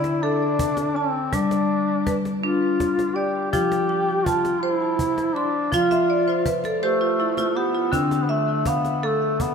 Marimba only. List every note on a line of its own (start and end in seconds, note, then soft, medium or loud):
0.00 1.29 D3 medium
0.00 0.96 D5 medium
0.00 0.59 E5 medium
0.23 0.96 A4 medium
0.96 1.69 A5 soft
1.33 2.06 G3 medium
2.07 3.16 B4 medium
2.43 3.16 D4 medium
3.16 3.89 D5 medium
3.53 5.69 F3 medium
3.53 4.26 F4 medium
3.89 4.99 G5 medium
4.26 5.36 A5 medium
4.63 5.36 C5 medium
5.36 6.46 C6 medium
5.72 7.88 F3 medium
5.72 6.46 F4 medium
5.72 6.07 F5 medium
5.91 6.25 E5 medium
6.10 6.44 D5 medium
6.28 6.62 C5 medium
6.46 6.80 B4 medium
6.65 6.99 A4 medium
6.83 7.17 G4 medium
6.83 7.56 C5 medium
7.01 7.35 F4 medium
7.20 7.53 E4 medium
7.38 7.72 F4 medium
7.56 7.90 G4 medium
7.75 8.08 F4 medium
7.92 9.54 D3 medium
7.92 8.66 D4 medium
8.29 9.39 E5 medium
8.67 9.54 F5 medium
9.03 9.54 A4 medium